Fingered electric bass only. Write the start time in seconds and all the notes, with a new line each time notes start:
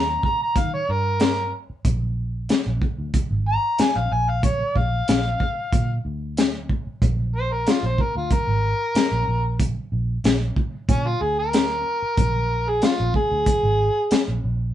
Already playing: D#2
0.56 D#3
0.89 G2
1.70 muted fingered electric bass stroke
1.85 A#1
2.66 A#1
2.98 D2
3.14 muted fingered electric bass stroke
3.31 G#1
3.79 muted fingered electric bass stroke
3.96 A#1
4.12 A#1
4.76 A#1
5.09 A#1
5.73 A#2
6.05 D2
6.87 muted fingered electric bass stroke
7.02 A#1
7.83 A#1
8.15 D2
8.31 muted fingered electric bass stroke
8.47 G#1
8.95 muted fingered electric bass stroke
9.11 A#1
9.28 A#1
9.92 A#1
10.24 A#1
10.89 A#2
11.21 D2
12.02 muted fingered electric bass stroke
12.18 A#1
13.00 A#1
13.31 D2
13.47 muted fingered electric bass stroke
13.63 G#1
14.11 muted fingered electric bass stroke
14.28 A#1
14.44 A#1